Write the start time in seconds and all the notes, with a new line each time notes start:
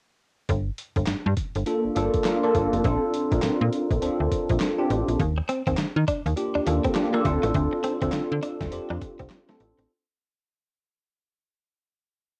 0.49 G1, kick, closed hi-hat
0.78 closed hi-hat
0.96 G1, kick, closed hi-hat
1.07 G2, snare, clap, closed hi-hat
1.26 G2
1.37 kick, closed hi-hat
1.55 G1, closed hi-hat
1.66 A#3 D4 F4 A4, closed hi-hat
1.85 G1
1.96 G1 A#3 D4 F4 A4, closed hi-hat
2.14 kick, closed hi-hat
2.24 A#3 D4 F4 A#4, snare, clap, closed hi-hat
2.43 A#3 D4 F4 A4
2.55 G1, kick, closed hi-hat
2.73 F1, closed hi-hat
2.84 A#1 C4 D4 F4 A4, kick, closed hi-hat
3.14 closed hi-hat
3.31 A#1 C4 D4 F4 A#4, kick, closed hi-hat
3.42 A#2, snare, clap, closed hi-hat
3.61 A#2
3.72 closed hi-hat
3.90 A#1, kick, closed hi-hat
4.01 C4 D4 F4 A4, closed hi-hat
4.20 D2
4.31 kick, closed hi-hat
4.49 A#1, kick, closed hi-hat
4.60 snare, clap, closed hi-hat
4.78 C4 D4 F4 G4
4.90 A1, closed hi-hat
5.08 A#1, closed hi-hat
5.20 D#2, kick, closed hi-hat
5.38 muted clean electric guitar stroke
5.49 C4, closed hi-hat
5.67 D#2 C4, kick, closed hi-hat
5.77 D#3, snare, clap, closed hi-hat
5.96 D#3
6.08 D4, kick, closed hi-hat
6.26 D#2, closed hi-hat
6.36 A#3 D4 F4 G4, closed hi-hat
6.55 D#2 D4
6.66 D#2 A#3 D4 F4 A4, muted clean electric guitar stroke, closed hi-hat
6.84 C4, kick, closed hi-hat
6.95 A#3 D4 F4 G4, snare, clap, closed hi-hat
7.13 A#3 D4 F4 A4
7.25 D2 C4 D4 F4 A4, muted clean electric guitar stroke, kick, closed hi-hat
7.43 A1 A3, closed hi-hat
7.54 D2, kick, closed hi-hat
7.73 muted clean electric guitar stroke
7.84 C4, closed hi-hat
8.02 D2 C4 D4 F4 A4, kick, closed hi-hat
8.12 D3, snare, clap, closed hi-hat
8.32 D3
8.43 D4, closed hi-hat
8.61 D2, kick, snare, closed hi-hat
8.72 F2 C4 D4 F4 G4, closed hi-hat
8.90 F2 D4
9.02 muted clean electric guitar stroke, kick, closed hi-hat
9.19 C2 C4, kick, closed hi-hat
9.30 snare, clap, closed hi-hat
9.49 A3 C4 D4 F4 A4, snare
9.60 A1, muted clean electric guitar stroke, closed hi-hat
9.78 A1 C4, closed hi-hat